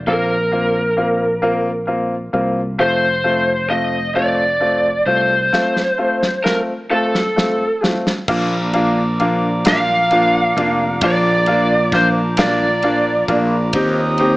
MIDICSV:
0, 0, Header, 1, 7, 480
1, 0, Start_track
1, 0, Key_signature, -2, "major"
1, 0, Tempo, 910470
1, 40, Time_signature, 6, 3, 24, 8
1, 7575, End_track
2, 0, Start_track
2, 0, Title_t, "Glass harmonica"
2, 0, Program_c, 0, 92
2, 4366, Note_on_c, 0, 65, 55
2, 4366, Note_on_c, 0, 74, 51
2, 4367, Note_on_c, 0, 82, 54
2, 4367, Note_on_c, 0, 86, 65
2, 7221, Note_off_c, 0, 65, 0
2, 7221, Note_off_c, 0, 74, 0
2, 7221, Note_off_c, 0, 86, 0
2, 7243, Note_on_c, 0, 72, 59
2, 7245, Note_on_c, 0, 67, 62
2, 7246, Note_on_c, 0, 87, 70
2, 7575, Note_off_c, 0, 67, 0
2, 7575, Note_off_c, 0, 72, 0
2, 7575, Note_off_c, 0, 82, 0
2, 7575, Note_off_c, 0, 87, 0
2, 7575, End_track
3, 0, Start_track
3, 0, Title_t, "Lead electric guitar"
3, 0, Program_c, 1, 29
3, 42, Note_on_c, 1, 70, 54
3, 974, Note_off_c, 1, 70, 0
3, 1478, Note_on_c, 1, 72, 73
3, 1947, Note_off_c, 1, 72, 0
3, 1949, Note_on_c, 1, 75, 80
3, 2188, Note_off_c, 1, 75, 0
3, 2190, Note_on_c, 1, 74, 78
3, 2667, Note_off_c, 1, 74, 0
3, 2669, Note_on_c, 1, 72, 73
3, 3395, Note_on_c, 1, 70, 65
3, 3417, Note_off_c, 1, 72, 0
3, 3461, Note_off_c, 1, 70, 0
3, 3645, Note_on_c, 1, 69, 50
3, 4167, Note_off_c, 1, 69, 0
3, 5105, Note_on_c, 1, 77, 87
3, 5819, Note_off_c, 1, 77, 0
3, 5821, Note_on_c, 1, 74, 91
3, 6272, Note_off_c, 1, 74, 0
3, 6296, Note_on_c, 1, 72, 81
3, 6359, Note_off_c, 1, 72, 0
3, 6534, Note_on_c, 1, 74, 74
3, 7046, Note_off_c, 1, 74, 0
3, 7575, End_track
4, 0, Start_track
4, 0, Title_t, "Grand piano"
4, 0, Program_c, 2, 0
4, 38, Note_on_c, 2, 58, 68
4, 38, Note_on_c, 2, 60, 63
4, 39, Note_on_c, 2, 65, 71
4, 175, Note_off_c, 2, 58, 0
4, 175, Note_off_c, 2, 60, 0
4, 175, Note_off_c, 2, 65, 0
4, 273, Note_on_c, 2, 58, 55
4, 274, Note_on_c, 2, 60, 49
4, 276, Note_on_c, 2, 65, 58
4, 412, Note_off_c, 2, 58, 0
4, 412, Note_off_c, 2, 60, 0
4, 413, Note_off_c, 2, 65, 0
4, 511, Note_on_c, 2, 58, 56
4, 512, Note_on_c, 2, 60, 52
4, 514, Note_on_c, 2, 65, 60
4, 650, Note_off_c, 2, 58, 0
4, 650, Note_off_c, 2, 60, 0
4, 652, Note_off_c, 2, 65, 0
4, 749, Note_on_c, 2, 58, 73
4, 751, Note_on_c, 2, 60, 59
4, 751, Note_on_c, 2, 65, 78
4, 888, Note_off_c, 2, 58, 0
4, 889, Note_off_c, 2, 60, 0
4, 890, Note_off_c, 2, 65, 0
4, 987, Note_on_c, 2, 58, 55
4, 989, Note_on_c, 2, 60, 49
4, 990, Note_on_c, 2, 65, 62
4, 1127, Note_off_c, 2, 58, 0
4, 1128, Note_off_c, 2, 60, 0
4, 1128, Note_off_c, 2, 65, 0
4, 1229, Note_on_c, 2, 58, 54
4, 1229, Note_on_c, 2, 60, 52
4, 1231, Note_on_c, 2, 65, 62
4, 1367, Note_off_c, 2, 58, 0
4, 1368, Note_off_c, 2, 60, 0
4, 1368, Note_off_c, 2, 65, 0
4, 1468, Note_on_c, 2, 57, 70
4, 1470, Note_on_c, 2, 60, 62
4, 1471, Note_on_c, 2, 65, 75
4, 1606, Note_off_c, 2, 57, 0
4, 1607, Note_off_c, 2, 60, 0
4, 1608, Note_off_c, 2, 65, 0
4, 1708, Note_on_c, 2, 57, 60
4, 1708, Note_on_c, 2, 60, 52
4, 1710, Note_on_c, 2, 65, 62
4, 1846, Note_off_c, 2, 57, 0
4, 1846, Note_off_c, 2, 60, 0
4, 1847, Note_off_c, 2, 65, 0
4, 1948, Note_on_c, 2, 57, 53
4, 1949, Note_on_c, 2, 60, 52
4, 1952, Note_on_c, 2, 65, 63
4, 2086, Note_off_c, 2, 57, 0
4, 2086, Note_off_c, 2, 60, 0
4, 2088, Note_off_c, 2, 65, 0
4, 2189, Note_on_c, 2, 57, 70
4, 2191, Note_on_c, 2, 60, 64
4, 2192, Note_on_c, 2, 65, 80
4, 2326, Note_off_c, 2, 57, 0
4, 2327, Note_off_c, 2, 60, 0
4, 2328, Note_off_c, 2, 65, 0
4, 2427, Note_on_c, 2, 57, 54
4, 2429, Note_on_c, 2, 60, 49
4, 2430, Note_on_c, 2, 65, 59
4, 2566, Note_off_c, 2, 57, 0
4, 2567, Note_off_c, 2, 60, 0
4, 2567, Note_off_c, 2, 65, 0
4, 2672, Note_on_c, 2, 57, 53
4, 2673, Note_on_c, 2, 60, 52
4, 2674, Note_on_c, 2, 65, 63
4, 2809, Note_off_c, 2, 57, 0
4, 2809, Note_off_c, 2, 60, 0
4, 2810, Note_off_c, 2, 65, 0
4, 2913, Note_on_c, 2, 57, 68
4, 2914, Note_on_c, 2, 60, 66
4, 2917, Note_on_c, 2, 65, 76
4, 3050, Note_off_c, 2, 57, 0
4, 3051, Note_off_c, 2, 60, 0
4, 3052, Note_off_c, 2, 65, 0
4, 3152, Note_on_c, 2, 57, 54
4, 3154, Note_on_c, 2, 60, 48
4, 3156, Note_on_c, 2, 65, 59
4, 3291, Note_off_c, 2, 57, 0
4, 3292, Note_off_c, 2, 60, 0
4, 3293, Note_off_c, 2, 65, 0
4, 3396, Note_on_c, 2, 57, 54
4, 3398, Note_on_c, 2, 60, 50
4, 3399, Note_on_c, 2, 65, 57
4, 3535, Note_off_c, 2, 57, 0
4, 3536, Note_off_c, 2, 60, 0
4, 3536, Note_off_c, 2, 65, 0
4, 3638, Note_on_c, 2, 57, 70
4, 3641, Note_on_c, 2, 60, 59
4, 3643, Note_on_c, 2, 65, 75
4, 3777, Note_off_c, 2, 57, 0
4, 3779, Note_off_c, 2, 60, 0
4, 3780, Note_off_c, 2, 65, 0
4, 3881, Note_on_c, 2, 57, 51
4, 3881, Note_on_c, 2, 60, 50
4, 3884, Note_on_c, 2, 65, 57
4, 4020, Note_off_c, 2, 57, 0
4, 4021, Note_off_c, 2, 60, 0
4, 4022, Note_off_c, 2, 65, 0
4, 4124, Note_on_c, 2, 57, 53
4, 4125, Note_on_c, 2, 60, 49
4, 4127, Note_on_c, 2, 65, 58
4, 4263, Note_off_c, 2, 57, 0
4, 4263, Note_off_c, 2, 60, 0
4, 4264, Note_off_c, 2, 65, 0
4, 4367, Note_on_c, 2, 58, 82
4, 4369, Note_on_c, 2, 62, 75
4, 4369, Note_on_c, 2, 65, 86
4, 4505, Note_off_c, 2, 58, 0
4, 4506, Note_off_c, 2, 62, 0
4, 4506, Note_off_c, 2, 65, 0
4, 4606, Note_on_c, 2, 58, 69
4, 4608, Note_on_c, 2, 62, 66
4, 4611, Note_on_c, 2, 65, 75
4, 4745, Note_off_c, 2, 58, 0
4, 4746, Note_off_c, 2, 62, 0
4, 4748, Note_off_c, 2, 65, 0
4, 4850, Note_on_c, 2, 58, 71
4, 4853, Note_on_c, 2, 62, 57
4, 4854, Note_on_c, 2, 65, 75
4, 4988, Note_off_c, 2, 58, 0
4, 4989, Note_off_c, 2, 62, 0
4, 4989, Note_off_c, 2, 65, 0
4, 5091, Note_on_c, 2, 58, 83
4, 5093, Note_on_c, 2, 62, 80
4, 5094, Note_on_c, 2, 65, 91
4, 5228, Note_off_c, 2, 58, 0
4, 5229, Note_off_c, 2, 62, 0
4, 5230, Note_off_c, 2, 65, 0
4, 5330, Note_on_c, 2, 58, 67
4, 5332, Note_on_c, 2, 62, 64
4, 5333, Note_on_c, 2, 65, 75
4, 5468, Note_off_c, 2, 58, 0
4, 5468, Note_off_c, 2, 62, 0
4, 5469, Note_off_c, 2, 65, 0
4, 5571, Note_on_c, 2, 58, 67
4, 5573, Note_on_c, 2, 62, 63
4, 5575, Note_on_c, 2, 65, 81
4, 5707, Note_off_c, 2, 58, 0
4, 5709, Note_off_c, 2, 62, 0
4, 5710, Note_off_c, 2, 65, 0
4, 5812, Note_on_c, 2, 58, 85
4, 5813, Note_on_c, 2, 62, 75
4, 5815, Note_on_c, 2, 65, 91
4, 5947, Note_off_c, 2, 58, 0
4, 5948, Note_off_c, 2, 62, 0
4, 5949, Note_off_c, 2, 65, 0
4, 6049, Note_on_c, 2, 58, 73
4, 6053, Note_on_c, 2, 62, 65
4, 6054, Note_on_c, 2, 65, 81
4, 6185, Note_off_c, 2, 58, 0
4, 6187, Note_off_c, 2, 62, 0
4, 6188, Note_off_c, 2, 65, 0
4, 6290, Note_on_c, 2, 58, 69
4, 6293, Note_on_c, 2, 62, 68
4, 6294, Note_on_c, 2, 65, 78
4, 6425, Note_off_c, 2, 58, 0
4, 6427, Note_off_c, 2, 62, 0
4, 6427, Note_off_c, 2, 65, 0
4, 6526, Note_on_c, 2, 58, 89
4, 6528, Note_on_c, 2, 62, 81
4, 6529, Note_on_c, 2, 65, 104
4, 6663, Note_off_c, 2, 58, 0
4, 6664, Note_off_c, 2, 62, 0
4, 6664, Note_off_c, 2, 65, 0
4, 6766, Note_on_c, 2, 58, 71
4, 6768, Note_on_c, 2, 62, 65
4, 6769, Note_on_c, 2, 65, 73
4, 6902, Note_off_c, 2, 58, 0
4, 6903, Note_off_c, 2, 62, 0
4, 6904, Note_off_c, 2, 65, 0
4, 7004, Note_on_c, 2, 58, 77
4, 7005, Note_on_c, 2, 62, 69
4, 7007, Note_on_c, 2, 65, 81
4, 7140, Note_off_c, 2, 58, 0
4, 7141, Note_off_c, 2, 62, 0
4, 7142, Note_off_c, 2, 65, 0
4, 7245, Note_on_c, 2, 60, 86
4, 7248, Note_on_c, 2, 63, 84
4, 7248, Note_on_c, 2, 67, 99
4, 7380, Note_off_c, 2, 60, 0
4, 7381, Note_off_c, 2, 63, 0
4, 7381, Note_off_c, 2, 67, 0
4, 7484, Note_on_c, 2, 60, 76
4, 7485, Note_on_c, 2, 63, 67
4, 7486, Note_on_c, 2, 67, 82
4, 7575, Note_off_c, 2, 60, 0
4, 7575, Note_off_c, 2, 63, 0
4, 7575, Note_off_c, 2, 67, 0
4, 7575, End_track
5, 0, Start_track
5, 0, Title_t, "Steel-string acoustic guitar"
5, 0, Program_c, 3, 25
5, 4365, Note_on_c, 3, 46, 81
5, 4367, Note_on_c, 3, 53, 79
5, 4368, Note_on_c, 3, 58, 80
5, 4371, Note_on_c, 3, 62, 94
5, 4372, Note_on_c, 3, 65, 83
5, 4600, Note_off_c, 3, 65, 0
5, 4606, Note_on_c, 3, 65, 54
5, 4608, Note_off_c, 3, 46, 0
5, 4608, Note_off_c, 3, 62, 0
5, 4609, Note_off_c, 3, 53, 0
5, 4609, Note_off_c, 3, 58, 0
5, 4614, Note_on_c, 3, 62, 52
5, 4619, Note_on_c, 3, 58, 46
5, 4845, Note_off_c, 3, 58, 0
5, 4847, Note_on_c, 3, 53, 61
5, 4848, Note_off_c, 3, 62, 0
5, 4849, Note_off_c, 3, 65, 0
5, 4851, Note_on_c, 3, 58, 65
5, 4855, Note_on_c, 3, 62, 64
5, 4858, Note_on_c, 3, 65, 64
5, 5084, Note_off_c, 3, 65, 0
5, 5087, Note_off_c, 3, 62, 0
5, 5088, Note_off_c, 3, 58, 0
5, 5089, Note_off_c, 3, 53, 0
5, 5090, Note_on_c, 3, 65, 68
5, 5094, Note_on_c, 3, 58, 52
5, 5094, Note_on_c, 3, 62, 65
5, 5097, Note_on_c, 3, 53, 55
5, 5100, Note_on_c, 3, 46, 49
5, 5324, Note_off_c, 3, 53, 0
5, 5329, Note_off_c, 3, 58, 0
5, 5330, Note_on_c, 3, 53, 53
5, 5331, Note_off_c, 3, 65, 0
5, 5332, Note_off_c, 3, 62, 0
5, 5335, Note_off_c, 3, 46, 0
5, 5336, Note_on_c, 3, 58, 54
5, 5338, Note_on_c, 3, 62, 56
5, 5342, Note_on_c, 3, 65, 64
5, 5565, Note_off_c, 3, 65, 0
5, 5570, Note_off_c, 3, 53, 0
5, 5570, Note_off_c, 3, 62, 0
5, 5571, Note_on_c, 3, 65, 53
5, 5573, Note_off_c, 3, 58, 0
5, 5581, Note_on_c, 3, 58, 40
5, 5809, Note_off_c, 3, 58, 0
5, 5810, Note_off_c, 3, 65, 0
5, 5811, Note_on_c, 3, 46, 81
5, 5814, Note_on_c, 3, 53, 77
5, 5815, Note_on_c, 3, 58, 82
5, 5818, Note_on_c, 3, 62, 84
5, 5819, Note_on_c, 3, 65, 83
5, 6043, Note_off_c, 3, 65, 0
5, 6049, Note_off_c, 3, 46, 0
5, 6049, Note_off_c, 3, 62, 0
5, 6049, Note_on_c, 3, 65, 51
5, 6051, Note_off_c, 3, 53, 0
5, 6051, Note_off_c, 3, 58, 0
5, 6060, Note_on_c, 3, 58, 44
5, 6285, Note_off_c, 3, 58, 0
5, 6286, Note_on_c, 3, 53, 55
5, 6288, Note_off_c, 3, 65, 0
5, 6291, Note_on_c, 3, 58, 59
5, 6293, Note_on_c, 3, 62, 64
5, 6298, Note_on_c, 3, 65, 62
5, 6520, Note_off_c, 3, 65, 0
5, 6523, Note_off_c, 3, 62, 0
5, 6524, Note_off_c, 3, 58, 0
5, 6526, Note_off_c, 3, 53, 0
5, 6526, Note_on_c, 3, 65, 70
5, 6529, Note_on_c, 3, 62, 64
5, 6530, Note_on_c, 3, 58, 61
5, 6533, Note_on_c, 3, 53, 54
5, 6535, Note_on_c, 3, 46, 54
5, 6757, Note_off_c, 3, 53, 0
5, 6761, Note_off_c, 3, 58, 0
5, 6763, Note_on_c, 3, 53, 58
5, 6764, Note_off_c, 3, 62, 0
5, 6765, Note_off_c, 3, 65, 0
5, 6767, Note_on_c, 3, 58, 62
5, 6770, Note_off_c, 3, 46, 0
5, 6771, Note_on_c, 3, 62, 59
5, 6775, Note_on_c, 3, 65, 66
5, 6998, Note_off_c, 3, 65, 0
5, 7003, Note_off_c, 3, 53, 0
5, 7004, Note_off_c, 3, 62, 0
5, 7005, Note_off_c, 3, 58, 0
5, 7005, Note_on_c, 3, 65, 56
5, 7010, Note_on_c, 3, 62, 47
5, 7014, Note_on_c, 3, 58, 42
5, 7240, Note_off_c, 3, 58, 0
5, 7243, Note_off_c, 3, 65, 0
5, 7244, Note_on_c, 3, 51, 95
5, 7245, Note_off_c, 3, 62, 0
5, 7246, Note_on_c, 3, 58, 96
5, 7249, Note_on_c, 3, 60, 99
5, 7250, Note_on_c, 3, 67, 102
5, 7474, Note_off_c, 3, 67, 0
5, 7480, Note_off_c, 3, 60, 0
5, 7481, Note_off_c, 3, 51, 0
5, 7481, Note_on_c, 3, 67, 59
5, 7482, Note_off_c, 3, 58, 0
5, 7487, Note_on_c, 3, 60, 61
5, 7492, Note_on_c, 3, 58, 50
5, 7575, Note_off_c, 3, 58, 0
5, 7575, Note_off_c, 3, 60, 0
5, 7575, Note_off_c, 3, 67, 0
5, 7575, End_track
6, 0, Start_track
6, 0, Title_t, "Fretless electric bass"
6, 0, Program_c, 4, 35
6, 36, Note_on_c, 4, 34, 72
6, 1209, Note_off_c, 4, 34, 0
6, 1230, Note_on_c, 4, 36, 66
6, 1456, Note_off_c, 4, 36, 0
6, 1470, Note_on_c, 4, 29, 78
6, 2648, Note_off_c, 4, 29, 0
6, 2669, Note_on_c, 4, 36, 67
6, 2896, Note_off_c, 4, 36, 0
6, 4366, Note_on_c, 4, 34, 94
6, 5549, Note_off_c, 4, 34, 0
6, 5570, Note_on_c, 4, 29, 81
6, 5795, Note_off_c, 4, 29, 0
6, 5809, Note_on_c, 4, 34, 102
6, 6983, Note_off_c, 4, 34, 0
6, 7003, Note_on_c, 4, 34, 91
6, 7227, Note_off_c, 4, 34, 0
6, 7241, Note_on_c, 4, 39, 99
6, 7575, Note_off_c, 4, 39, 0
6, 7575, End_track
7, 0, Start_track
7, 0, Title_t, "Drums"
7, 2917, Note_on_c, 9, 38, 42
7, 2970, Note_off_c, 9, 38, 0
7, 3039, Note_on_c, 9, 38, 39
7, 3092, Note_off_c, 9, 38, 0
7, 3282, Note_on_c, 9, 38, 46
7, 3335, Note_off_c, 9, 38, 0
7, 3404, Note_on_c, 9, 38, 57
7, 3457, Note_off_c, 9, 38, 0
7, 3769, Note_on_c, 9, 38, 57
7, 3822, Note_off_c, 9, 38, 0
7, 3891, Note_on_c, 9, 38, 72
7, 3944, Note_off_c, 9, 38, 0
7, 4133, Note_on_c, 9, 38, 72
7, 4186, Note_off_c, 9, 38, 0
7, 4253, Note_on_c, 9, 38, 69
7, 4306, Note_off_c, 9, 38, 0
7, 4365, Note_on_c, 9, 49, 83
7, 4366, Note_on_c, 9, 36, 100
7, 4417, Note_off_c, 9, 49, 0
7, 4419, Note_off_c, 9, 36, 0
7, 4605, Note_on_c, 9, 51, 38
7, 4657, Note_off_c, 9, 51, 0
7, 4848, Note_on_c, 9, 51, 36
7, 4901, Note_off_c, 9, 51, 0
7, 5086, Note_on_c, 9, 51, 71
7, 5096, Note_on_c, 9, 38, 108
7, 5139, Note_off_c, 9, 51, 0
7, 5149, Note_off_c, 9, 38, 0
7, 5327, Note_on_c, 9, 51, 44
7, 5380, Note_off_c, 9, 51, 0
7, 5575, Note_on_c, 9, 51, 40
7, 5628, Note_off_c, 9, 51, 0
7, 5805, Note_on_c, 9, 51, 75
7, 5808, Note_on_c, 9, 36, 103
7, 5858, Note_off_c, 9, 51, 0
7, 5861, Note_off_c, 9, 36, 0
7, 6042, Note_on_c, 9, 51, 41
7, 6095, Note_off_c, 9, 51, 0
7, 6285, Note_on_c, 9, 36, 92
7, 6285, Note_on_c, 9, 51, 37
7, 6293, Note_on_c, 9, 38, 34
7, 6338, Note_off_c, 9, 36, 0
7, 6338, Note_off_c, 9, 51, 0
7, 6346, Note_off_c, 9, 38, 0
7, 6521, Note_on_c, 9, 51, 71
7, 6532, Note_on_c, 9, 38, 104
7, 6574, Note_off_c, 9, 51, 0
7, 6584, Note_off_c, 9, 38, 0
7, 6761, Note_on_c, 9, 51, 44
7, 6814, Note_off_c, 9, 51, 0
7, 7003, Note_on_c, 9, 36, 83
7, 7004, Note_on_c, 9, 51, 42
7, 7056, Note_off_c, 9, 36, 0
7, 7057, Note_off_c, 9, 51, 0
7, 7238, Note_on_c, 9, 51, 78
7, 7241, Note_on_c, 9, 36, 101
7, 7291, Note_off_c, 9, 51, 0
7, 7294, Note_off_c, 9, 36, 0
7, 7474, Note_on_c, 9, 51, 43
7, 7526, Note_off_c, 9, 51, 0
7, 7575, End_track
0, 0, End_of_file